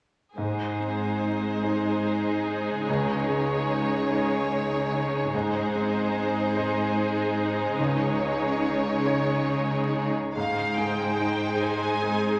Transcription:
0.36 harp G#2, cello section G#2, grand piano G#2, viola section G#3 D#4, violin section G#4 C5
0.80 harp C4
1.22 harp D#4
1.63 grand piano D#4 C5, harp G#4
2.06 harp C5
2.47 harp D#4
2.87 grand piano C#2, cello section C#3, harp C#3, violin section C#5
3.29 harp C#4
3.69 harp D#4
4.11 grand piano D#4 C#5, harp G#4
4.51 harp C#5
4.93 harp D#4
5.33 cello section G#2, harp G#2, grand piano G#2, viola section G#3 D#4, violin section G#4 C5
5.75 harp C4
6.16 harp D#4
6.56 grand piano D#4 C5, harp G#4
6.96 harp C5
7.37 harp D#4
7.78 grand piano C#2, harp C#3, cello section C#3, violin section C#5
8.20 harp C#4
8.62 harp D#4
9.04 grand piano D#4 C#5, harp G#4
9.49 harp C#5
9.93 harp D#4
10.35 harp G#2, cello section G#2, grand piano G#2, viola section G#3 D#4, violin section G#4 C5 F5
10.78 grand piano G#3, harp G#4, violin section G5
11.20 harp D#4, grand piano D#4
11.60 harp G#4, grand piano C5, violin section G#5
12.02 harp C4, grand piano G#4

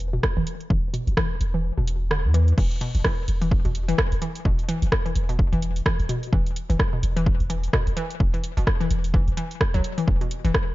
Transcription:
Already playing: sub bass E1
0.00 closed hi-hat
0.13 synth arpeggio sound B2
0.23 kick, cross-stick
0.37 sub bass E1, synth arpeggio sound E3
0.47 closed hi-hat
0.60 closed hi-hat
0.70 sub bass E1, synth arpeggio sound E3, kick
0.94 synth arpeggio sound B2, closed hi-hat
1.07 sub bass E1, closed hi-hat
1.17 synth arpeggio sound E3, kick, cross-stick
1.40 sub bass E1, closed hi-hat
1.54 synth arpeggio sound E3
1.77 sub bass E1, synth arpeggio sound B2
1.88 closed hi-hat
2.11 synth arpeggio sound D3, cross-stick
2.25 sub bass E2
2.34 synth arpeggio sound E3, closed hi-hat
2.48 closed hi-hat
2.58 sub bass E1, synth arpeggio sound E3, kick, crash
2.71 closed hi-hat
2.81 synth arpeggio sound B2, closed hi-hat
2.95 sub bass E1, closed hi-hat
3.04 synth arpeggio sound E3, kick, cross-stick
3.28 sub bass E1, closed hi-hat
3.42 synth arpeggio sound E3, closed hi-hat
3.51 kick
3.65 sub bass E1, synth arpeggio sound B2, closed hi-hat
3.75 closed hi-hat
3.88 synth arpeggio sound E3, closed hi-hat
3.98 kick, cross-stick
4.12 sub bass E1, closed hi-hat
4.22 synth arpeggio sound E3, closed hi-hat
4.35 closed hi-hat
4.45 sub bass E1, synth arpeggio sound B2, kick
4.59 closed hi-hat
4.69 synth arpeggio sound E3, closed hi-hat
4.82 sub bass E1, closed hi-hat
4.92 kick, cross-stick
5.06 synth arpeggio sound E3, closed hi-hat
5.16 sub bass E1, closed hi-hat
5.29 synth arpeggio sound B2, closed hi-hat
5.39 kick
5.53 sub bass E1, synth arpeggio sound E3, closed hi-hat
5.62 closed hi-hat
5.76 closed hi-hat
5.86 synth arpeggio sound E3, kick, cross-stick
5.99 sub bass E1, closed hi-hat
6.09 synth arpeggio sound B2, closed hi-hat
6.23 closed hi-hat
6.33 sub bass E1, synth arpeggio sound E3, kick
6.46 closed hi-hat
6.56 closed hi-hat
6.70 sub bass E1, synth arpeggio sound E3, closed hi-hat
6.79 kick, cross-stick
6.93 synth arpeggio sound B2
7.03 sub bass E1, closed hi-hat
7.17 synth arpeggio sound E3, closed hi-hat
7.26 kick
7.40 sub bass E1, closed hi-hat
7.50 synth arpeggio sound E3, closed hi-hat
7.64 closed hi-hat
7.73 synth arpeggio sound B2, kick, cross-stick
7.87 sub bass E1, closed hi-hat
7.97 synth arpeggio sound E3, closed hi-hat
8.10 closed hi-hat
8.20 sub bass E1, kick
8.34 synth arpeggio sound E3, closed hi-hat
8.44 closed hi-hat
8.57 sub bass E1, synth arpeggio sound B2, closed hi-hat
8.67 kick, cross-stick
8.80 synth arpeggio sound E3, closed hi-hat
8.90 sub bass E1, closed hi-hat
9.04 closed hi-hat
9.14 synth arpeggio sound E3, kick
9.27 sub bass E1, closed hi-hat
9.37 synth arpeggio sound E3, closed hi-hat
9.51 closed hi-hat
9.61 kick, cross-stick
9.74 sub bass B1, synth arpeggio sound F#3, closed hi-hat
9.84 closed hi-hat
9.98 synth arpeggio sound E3, closed hi-hat
10.08 sub bass E1, kick
10.21 synth arpeggio sound B2, closed hi-hat
10.31 closed hi-hat
10.45 sub bass E1, synth arpeggio sound E3, closed hi-hat
10.54 kick, cross-stick

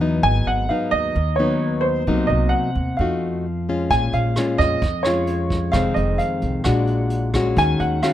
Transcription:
Already playing: upright bass E2, nylon-string guitar E3
0.01 nylon-string guitar F#3 B3 D#4
0.22 upright bass G#1, nylon-string guitar G#2, grand piano G#5
0.46 upright bass G#1, grand piano F#5
0.69 nylon-string guitar F#3 B3 D#4, grand piano F5
0.91 upright bass D#2, grand piano D#5
1.15 upright bass D#2, nylon-string guitar D#3
1.36 nylon-string guitar F#3 B3, grand piano C#5
1.40 nylon-string guitar D#4
1.81 grand piano C5
2.07 upright bass C2, nylon-string guitar C3 F#3 A#3 D#4
2.27 upright bass C2, grand piano D#5
2.49 grand piano F#5
2.75 upright bass D#2
2.97 upright bass F2, nylon-string guitar F3 A3 D#4, grand piano F5
3.01 nylon-string guitar F#4
3.69 nylon-string guitar G#3 C#4 F4
3.90 upright bass A#1, nylon-string guitar A#2, grand piano G#5, kick, closed hi-hat
4.13 upright bass A#1, grand piano F5, closed hi-hat
4.36 nylon-string guitar G#3 C#4 F4, cross-stick, closed hi-hat
4.58 upright bass F2, grand piano D#5, kick, closed hi-hat
4.82 upright bass F2, nylon-string guitar F2, kick, closed hi-hat
5.03 nylon-string guitar G#3 C#4 F4, grand piano C#5, cross-stick, closed hi-hat
5.27 closed hi-hat
5.50 kick, closed hi-hat
5.72 upright bass F1, nylon-string guitar F2 D#3 G#3 C4, grand piano F5, kick, cross-stick, closed hi-hat
5.94 upright bass F1, grand piano D#5, closed hi-hat
6.18 grand piano F5, closed hi-hat
6.42 upright bass C2, closed hi-hat
6.64 upright bass A#1, nylon-string guitar A#2 G#3 D4 F#4, grand piano F#5, kick, cross-stick, closed hi-hat
6.87 closed hi-hat
7.10 closed hi-hat
7.34 nylon-string guitar G#3 C#4 F#4, kick, cross-stick, closed hi-hat
7.56 upright bass D#2, nylon-string guitar D#3, grand piano G#5, kick, closed hi-hat
7.80 upright bass D#2, grand piano F#5, closed hi-hat
8.03 nylon-string guitar G#3 C#4 F#4, grand piano F5, cross-stick, closed hi-hat

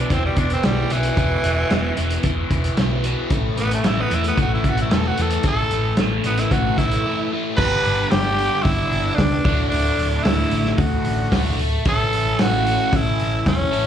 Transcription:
Already playing: overdriven electric guitar B2 E3
0.00 tenor saxophone D4
0.10 picked electric bass E1, overdriven electric guitar E2 B2 E3, tenor saxophone C4, kick, closed hi-hat
0.26 tenor saxophone G3
0.36 picked electric bass E1, overdriven electric guitar E2 B2 E3, tenor saxophone D4, kick, closed hi-hat
0.50 tenor saxophone C4, closed hi-hat
0.63 picked electric bass B1, overdriven electric guitar E2 B2 E3, tenor saxophone G3, snare, closed hi-hat
0.90 picked electric bass B1, overdriven electric guitar E2 B2 E3, tenor saxophone E3, closed hi-hat
1.03 closed hi-hat
1.17 picked electric bass E1, overdriven electric guitar E2 B2 E3, kick, closed hi-hat
1.44 picked electric bass E1, overdriven electric guitar E2 B2 E3, closed hi-hat
1.70 picked electric bass E1, overdriven electric guitar E2 B2 E3, snare, closed hi-hat
1.97 picked electric bass E1, overdriven electric guitar E2 B2 E3, closed hi-hat
2.10 closed hi-hat
2.23 picked electric bass E1, overdriven electric guitar E2 B2 E3, kick, closed hi-hat
2.50 picked electric bass E1, overdriven electric guitar E2 B2 E3, kick, snare, closed hi-hat
2.64 closed hi-hat
2.77 picked electric bass B1, overdriven electric guitar E2 B2 E3, snare, closed hi-hat
3.04 overdriven electric guitar E2 B2 E3, closed hi-hat
3.30 picked electric bass A1, overdriven electric guitar A2 E3 A3, kick, closed hi-hat
3.57 picked electric bass A1, overdriven electric guitar A2 E3 A3, tenor saxophone B3, closed hi-hat
3.71 tenor saxophone A3, closed hi-hat
3.84 picked electric bass A1, overdriven electric guitar A2 E3 A3, tenor saxophone E4, snare, closed hi-hat
4.01 tenor saxophone B3
4.09 picked electric bass E2, overdriven electric guitar A2 E3 A3, closed hi-hat
4.15 tenor saxophone E4
4.24 tenor saxophone B3, closed hi-hat
4.36 picked electric bass A1, overdriven electric guitar A2 E3 A3, kick, closed hi-hat
4.41 tenor saxophone F#4
4.54 tenor saxophone E4
4.64 picked electric bass A1, overdriven electric guitar A2 E3 A3, kick, closed hi-hat
4.68 tenor saxophone F#4
4.77 closed hi-hat
4.81 tenor saxophone E4
4.90 picked electric bass E1, overdriven electric guitar A2 E3 A3, tenor saxophone A4, snare, closed hi-hat
5.08 tenor saxophone F#4
5.17 picked electric bass E2, overdriven electric guitar A2 E3 A3, closed hi-hat
5.22 tenor saxophone A4
5.30 closed hi-hat
5.43 picked electric bass A1, overdriven electric guitar A2 E3 A3, kick, closed hi-hat
5.48 tenor saxophone A4
5.71 picked electric bass A1, overdriven electric guitar A2 E3 A3, closed hi-hat
5.97 picked electric bass A1, overdriven electric guitar A2 E3 A3, snare, closed hi-hat
6.24 picked electric bass A1, overdriven electric guitar A2 E3 A3, tenor saxophone B3, closed hi-hat
6.38 tenor saxophone E4, closed hi-hat
6.51 picked electric bass A1, overdriven electric guitar A2 E3 A3, tenor saxophone F#4, kick, closed hi-hat
6.78 picked electric bass A1, overdriven electric guitar A2 E3 A3, tenor saxophone E4, kick, snare, closed hi-hat
6.91 closed hi-hat
7.05 overdriven electric guitar A2 E3 A3
7.32 overdriven electric guitar A2 E3 A3
7.57 picked electric bass G1, overdriven electric guitar G2 D3 G3 B3 D4, tenor saxophone B4, kick, crash
7.62 overdriven electric guitar G4
7.85 picked electric bass G1, open hi-hat
8.11 picked electric bass G1, tenor saxophone G4, snare, open hi-hat
8.39 open hi-hat
8.63 picked electric bass G1, tenor saxophone E4, kick, open hi-hat
8.92 picked electric bass G1, open hi-hat
9.15 picked electric bass C#2, tenor saxophone D4, kick, snare, open hi-hat
9.45 picked electric bass D1, overdriven electric guitar D2 A2 D3 A3 F#4, kick, open hi-hat
9.69 picked electric bass D1, tenor saxophone D4, open hi-hat
9.99 picked electric bass D1, open hi-hat
10.23 picked electric bass D1, tenor saxophone E4, snare, open hi-hat
10.51 picked electric bass A1, open hi-hat
10.65 snare
10.72 tenor saxophone E4
10.77 picked electric bass D1, tenor saxophone F#4, kick, open hi-hat
11.05 picked electric bass A1, open hi-hat
11.32 picked electric bass D1, overdriven electric guitar D2 A2 D3 A3, kick, snare, open hi-hat
11.36 overdriven electric guitar F#4
11.58 picked electric bass D1, open hi-hat
11.85 picked electric bass A1, overdriven electric guitar A2 E3 A3 C#4 E4, tenor saxophone A4, kick, open hi-hat
11.90 overdriven electric guitar A4
12.13 picked electric bass A1, open hi-hat
12.39 picked electric bass A1, tenor saxophone F#4, snare, open hi-hat
12.67 open hi-hat
12.93 picked electric bass A1, tenor saxophone E4, kick, open hi-hat
13.19 picked electric bass A1, open hi-hat
13.46 picked electric bass E2, tenor saxophone C#4, kick, snare, open hi-hat
13.72 picked electric bass A1, overdriven electric guitar E3 A3 C#4 E4 A4, open hi-hat
13.77 overdriven electric guitar A2

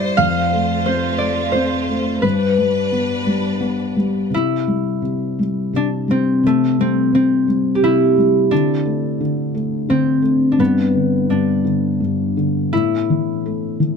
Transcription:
Already playing: felt piano G2 G3 E4, string section G3 E4 C5, harp C5 D5
0.17 felt piano F2, string section A3 F4, harp F5
0.53 felt piano A3
0.86 felt piano C4, harp C5
1.18 felt piano A3, harp D5
1.52 felt piano C4, harp C5
1.89 felt piano A3
2.22 felt piano G2, string section G3 D4 B4, harp B4
2.58 felt piano G3
2.92 felt piano B3
3.27 felt piano G3
3.61 felt piano B3
3.97 felt piano G3
4.30 felt piano C3
4.34 harp E4
4.68 felt piano G3
5.02 felt piano C3
5.39 felt piano G3
5.73 felt piano C3, harp D4
6.08 felt piano G3, harp C4
6.43 felt piano C3, harp A3
6.79 felt piano G3, harp C4
7.13 felt piano C3, harp C4
7.48 felt piano G3
7.75 harp G4
7.82 felt piano C3, harp E4
8.18 felt piano G3
8.51 felt piano D3, harp D4
8.86 felt piano A3
9.21 felt piano D3
9.54 felt piano A3
9.88 felt piano D3, harp C4
10.22 felt piano A3
10.52 harp D4
10.59 felt piano G2, harp B3
10.94 felt piano D3
11.29 felt piano G2, harp D4
11.65 felt piano D3
12.00 felt piano G2
12.37 felt piano D3
12.73 felt piano A2, harp E4
13.10 felt piano E3
13.46 felt piano A3
13.80 felt piano E3

